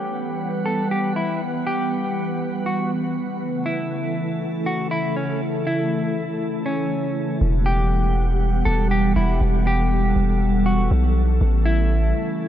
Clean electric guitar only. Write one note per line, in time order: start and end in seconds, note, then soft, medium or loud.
0.00 0.62 G4 medium
0.66 0.90 A4 medium
0.91 1.15 G4 medium
1.16 1.40 E4 medium
1.67 2.62 G4 medium
2.66 2.90 F#4 medium
3.66 4.62 E4 medium
4.66 4.90 F#4 medium
4.91 5.15 E4 medium
5.16 5.40 C#4 medium
5.67 6.62 E4 medium
6.66 7.37 C#4 medium
7.66 8.62 G4 medium
8.65 8.89 A4 medium
8.91 9.15 G4 medium
9.16 9.40 E4 medium
9.67 10.63 G4 medium
10.66 10.90 F#4 medium
11.66 12.48 E4 medium